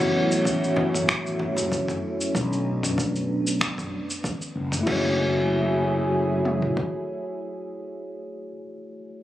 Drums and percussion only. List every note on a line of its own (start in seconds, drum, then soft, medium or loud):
0.00 shaker soft
0.32 shaker medium
0.45 kick loud
0.45 shaker medium
0.64 shaker soft
0.76 high conga medium
0.76 low conga medium
0.94 mid tom medium
0.94 shaker medium
1.09 finger snap medium
1.09 kick medium
1.09 shaker soft
1.26 shaker soft
1.39 low conga medium
1.57 high conga medium
1.57 shaker medium
1.72 kick medium
1.72 shaker medium
1.88 mid tom medium
1.88 shaker soft
2.21 shaker medium
2.35 kick loud
2.35 shaker medium
2.53 shaker soft
2.83 mid tom medium
2.83 shaker medium
2.98 kick loud
2.98 shaker medium
3.16 shaker soft
3.47 shaker medium
3.61 finger snap medium
3.61 kick medium
3.61 shaker medium
3.78 mid tom medium
3.78 shaker soft
4.10 shaker medium
4.24 kick medium
4.24 shaker soft
4.41 shaker soft
4.72 mid tom medium
4.72 shaker medium
4.87 kick loud
4.87 crash medium
6.45 mid tom soft
6.62 floor tom medium
6.77 kick medium